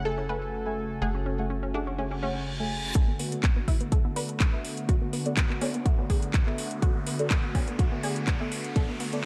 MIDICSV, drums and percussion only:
0, 0, Header, 1, 2, 480
1, 0, Start_track
1, 0, Tempo, 483871
1, 1010, Time_signature, 4, 2, 24, 8
1, 9177, End_track
2, 0, Start_track
2, 0, Title_t, "Drums"
2, 2928, Note_on_c, 9, 36, 113
2, 2929, Note_on_c, 9, 42, 77
2, 3028, Note_off_c, 9, 36, 0
2, 3028, Note_off_c, 9, 42, 0
2, 3168, Note_on_c, 9, 46, 106
2, 3268, Note_off_c, 9, 46, 0
2, 3295, Note_on_c, 9, 42, 52
2, 3394, Note_off_c, 9, 42, 0
2, 3407, Note_on_c, 9, 39, 115
2, 3409, Note_on_c, 9, 36, 106
2, 3409, Note_on_c, 9, 42, 76
2, 3507, Note_off_c, 9, 39, 0
2, 3508, Note_off_c, 9, 36, 0
2, 3508, Note_off_c, 9, 42, 0
2, 3648, Note_on_c, 9, 36, 58
2, 3649, Note_on_c, 9, 46, 98
2, 3748, Note_off_c, 9, 36, 0
2, 3748, Note_off_c, 9, 46, 0
2, 3775, Note_on_c, 9, 42, 52
2, 3874, Note_off_c, 9, 42, 0
2, 3888, Note_on_c, 9, 36, 112
2, 3889, Note_on_c, 9, 42, 78
2, 3988, Note_off_c, 9, 36, 0
2, 3988, Note_off_c, 9, 42, 0
2, 4129, Note_on_c, 9, 46, 103
2, 4228, Note_off_c, 9, 46, 0
2, 4256, Note_on_c, 9, 42, 53
2, 4355, Note_off_c, 9, 42, 0
2, 4367, Note_on_c, 9, 39, 108
2, 4369, Note_on_c, 9, 36, 113
2, 4369, Note_on_c, 9, 42, 78
2, 4467, Note_off_c, 9, 39, 0
2, 4468, Note_off_c, 9, 36, 0
2, 4468, Note_off_c, 9, 42, 0
2, 4609, Note_on_c, 9, 46, 98
2, 4708, Note_off_c, 9, 46, 0
2, 4736, Note_on_c, 9, 42, 51
2, 4835, Note_off_c, 9, 42, 0
2, 4849, Note_on_c, 9, 36, 111
2, 4849, Note_on_c, 9, 42, 77
2, 4948, Note_off_c, 9, 36, 0
2, 4948, Note_off_c, 9, 42, 0
2, 5089, Note_on_c, 9, 46, 103
2, 5188, Note_off_c, 9, 46, 0
2, 5215, Note_on_c, 9, 42, 50
2, 5315, Note_off_c, 9, 42, 0
2, 5328, Note_on_c, 9, 39, 121
2, 5329, Note_on_c, 9, 36, 110
2, 5329, Note_on_c, 9, 42, 76
2, 5427, Note_off_c, 9, 39, 0
2, 5428, Note_off_c, 9, 36, 0
2, 5429, Note_off_c, 9, 42, 0
2, 5454, Note_on_c, 9, 39, 37
2, 5553, Note_off_c, 9, 39, 0
2, 5569, Note_on_c, 9, 46, 102
2, 5668, Note_off_c, 9, 46, 0
2, 5695, Note_on_c, 9, 42, 52
2, 5795, Note_off_c, 9, 42, 0
2, 5809, Note_on_c, 9, 36, 117
2, 5810, Note_on_c, 9, 42, 73
2, 5908, Note_off_c, 9, 36, 0
2, 5909, Note_off_c, 9, 42, 0
2, 6049, Note_on_c, 9, 36, 58
2, 6049, Note_on_c, 9, 46, 109
2, 6148, Note_off_c, 9, 36, 0
2, 6148, Note_off_c, 9, 46, 0
2, 6175, Note_on_c, 9, 42, 50
2, 6274, Note_off_c, 9, 42, 0
2, 6287, Note_on_c, 9, 39, 109
2, 6289, Note_on_c, 9, 36, 117
2, 6289, Note_on_c, 9, 42, 72
2, 6386, Note_off_c, 9, 39, 0
2, 6388, Note_off_c, 9, 36, 0
2, 6388, Note_off_c, 9, 42, 0
2, 6413, Note_on_c, 9, 39, 37
2, 6513, Note_off_c, 9, 39, 0
2, 6529, Note_on_c, 9, 46, 109
2, 6628, Note_off_c, 9, 46, 0
2, 6655, Note_on_c, 9, 42, 47
2, 6754, Note_off_c, 9, 42, 0
2, 6769, Note_on_c, 9, 36, 120
2, 6769, Note_on_c, 9, 42, 74
2, 6868, Note_off_c, 9, 36, 0
2, 6868, Note_off_c, 9, 42, 0
2, 7009, Note_on_c, 9, 46, 111
2, 7108, Note_off_c, 9, 46, 0
2, 7135, Note_on_c, 9, 42, 49
2, 7235, Note_off_c, 9, 42, 0
2, 7247, Note_on_c, 9, 39, 123
2, 7248, Note_on_c, 9, 42, 73
2, 7249, Note_on_c, 9, 36, 113
2, 7346, Note_off_c, 9, 39, 0
2, 7348, Note_off_c, 9, 36, 0
2, 7348, Note_off_c, 9, 42, 0
2, 7489, Note_on_c, 9, 36, 59
2, 7489, Note_on_c, 9, 46, 102
2, 7588, Note_off_c, 9, 36, 0
2, 7588, Note_off_c, 9, 46, 0
2, 7615, Note_on_c, 9, 42, 48
2, 7714, Note_off_c, 9, 42, 0
2, 7729, Note_on_c, 9, 36, 118
2, 7729, Note_on_c, 9, 42, 70
2, 7828, Note_off_c, 9, 36, 0
2, 7828, Note_off_c, 9, 42, 0
2, 7969, Note_on_c, 9, 46, 105
2, 8069, Note_off_c, 9, 46, 0
2, 8095, Note_on_c, 9, 42, 52
2, 8195, Note_off_c, 9, 42, 0
2, 8207, Note_on_c, 9, 39, 110
2, 8209, Note_on_c, 9, 36, 120
2, 8209, Note_on_c, 9, 42, 68
2, 8307, Note_off_c, 9, 39, 0
2, 8308, Note_off_c, 9, 36, 0
2, 8308, Note_off_c, 9, 42, 0
2, 8449, Note_on_c, 9, 46, 109
2, 8548, Note_off_c, 9, 46, 0
2, 8575, Note_on_c, 9, 42, 49
2, 8675, Note_off_c, 9, 42, 0
2, 8689, Note_on_c, 9, 36, 120
2, 8689, Note_on_c, 9, 42, 72
2, 8788, Note_off_c, 9, 36, 0
2, 8788, Note_off_c, 9, 42, 0
2, 8928, Note_on_c, 9, 46, 102
2, 9028, Note_off_c, 9, 46, 0
2, 9055, Note_on_c, 9, 42, 48
2, 9154, Note_off_c, 9, 42, 0
2, 9177, End_track
0, 0, End_of_file